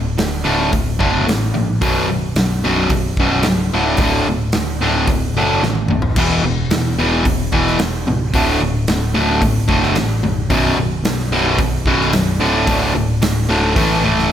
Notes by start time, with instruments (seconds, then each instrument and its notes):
Already playing: picked electric bass D1, overdriven electric guitar D2 A2
0.18 picked electric bass D1, overdriven electric guitar D2 A2, snare, open hi-hat
0.45 picked electric bass D1, overdriven electric guitar D2 A2 D3
0.72 picked electric bass D1, overdriven electric guitar D2 A2, kick, open hi-hat
0.99 picked electric bass F#1, overdriven electric guitar D2 A2 D3, kick
1.27 picked electric bass A1, overdriven electric guitar D2 A2, snare, open hi-hat
1.54 picked electric bass A#1, overdriven electric guitar D2 A2
1.81 picked electric bass B0, overdriven electric guitar B1 F#2 B2, kick, open hi-hat
2.09 picked electric bass B0, overdriven electric guitar B1 F#2
2.36 picked electric bass B1, overdriven electric guitar B1 F#2, snare, open hi-hat
2.64 picked electric bass B0, overdriven electric guitar B1 F#2 B2
2.90 picked electric bass B0, overdriven electric guitar B1 F#2, kick, open hi-hat
3.17 picked electric bass B0, overdriven electric guitar B1 F#2 B2, kick
3.43 picked electric bass C#1, overdriven electric guitar B1 F#2, snare, open hi-hat
3.72 picked electric bass D1, overdriven electric guitar D2 A2 D3
3.97 picked electric bass D1, overdriven electric guitar D2, kick, open hi-hat
4.01 overdriven electric guitar A2 D3
4.26 picked electric bass D1, overdriven electric guitar D2 A2
4.52 picked electric bass D1, overdriven electric guitar D2 A2, snare, open hi-hat
4.80 picked electric bass D1, overdriven electric guitar D2 A2 D3
5.07 picked electric bass D1, overdriven electric guitar D2 A2, kick, open hi-hat
5.35 picked electric bass F#1, overdriven electric guitar D2 A2 D3
5.63 picked electric bass A1, overdriven electric guitar D2 A2, snare
5.75 high tom
5.88 picked electric bass B0, overdriven electric guitar D2 A2, mid tom
6.02 floor tom
6.16 picked electric bass E1, overdriven electric guitar E2 B2 E3, kick, crash
6.43 picked electric bass E1, overdriven electric guitar E2 B2
6.71 picked electric bass E2, overdriven electric guitar E2 B2, snare, open hi-hat
6.97 picked electric bass E1, overdriven electric guitar E2 B2 E3
7.25 picked electric bass E1, overdriven electric guitar E2 B2, kick, open hi-hat
7.52 picked electric bass E1, overdriven electric guitar E2 B2 E3, kick
7.67 snare
7.79 picked electric bass E1, overdriven electric guitar E2 B2, snare, open hi-hat
8.07 picked electric bass C#1, overdriven electric guitar E2 B2
8.34 picked electric bass D1, overdriven electric guitar D2 A2 D3, kick, open hi-hat
8.61 picked electric bass D1, overdriven electric guitar D2 A2
8.87 picked electric bass D1, overdriven electric guitar D2 A2, snare, open hi-hat
9.14 picked electric bass D1, overdriven electric guitar D2 A2 D3
9.42 picked electric bass D1, overdriven electric guitar D2 A2, kick, open hi-hat
9.68 picked electric bass F#1, overdriven electric guitar D2 A2 D3, kick
9.83 snare
9.95 picked electric bass A1, overdriven electric guitar D2 A2, snare, open hi-hat
10.23 picked electric bass B0, overdriven electric guitar D2 A2
10.50 picked electric bass B0, overdriven electric guitar B1 F#2 B2, kick, open hi-hat
10.77 picked electric bass B0, overdriven electric guitar B1 F#2
11.04 picked electric bass B1, overdriven electric guitar B1 F#2, snare, open hi-hat
11.20 snare
11.31 picked electric bass B0, overdriven electric guitar B1 F#2 B2
11.58 picked electric bass B0, overdriven electric guitar B1 F#2, kick, open hi-hat
11.85 picked electric bass B0, overdriven electric guitar B1 F#2 B2, kick
12.01 snare
12.13 picked electric bass B0, overdriven electric guitar B1 F#2, snare, open hi-hat
12.40 picked electric bass D1, overdriven electric guitar D2 A2 D3
12.66 picked electric bass D1, overdriven electric guitar D2 A2 D3, kick, open hi-hat
12.95 picked electric bass D1, overdriven electric guitar D2 A2
13.22 picked electric bass D1, overdriven electric guitar D2 A2, snare, open hi-hat
13.49 picked electric bass D1, overdriven electric guitar D2 A2 D3
13.76 picked electric bass A1, overdriven electric guitar A2 E3 A3, kick, open hi-hat
14.03 picked electric bass C#1, overdriven electric guitar A2 E3 A3
14.19 snare